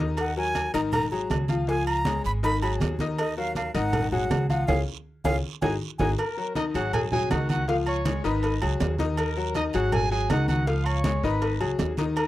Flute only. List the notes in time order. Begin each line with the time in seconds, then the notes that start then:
0.20 F#5
0.37 G#5
0.75 A#5
0.92 A#5
1.11 A#5
1.69 G#5
1.88 A#5
2.26 B5
2.44 B5
2.63 B5
3.20 D#5
3.38 F5
3.57 F5
3.75 F#5
4.12 F#5
4.50 F#5
4.67 F5
5.24 F5
5.62 G#5
5.98 G#5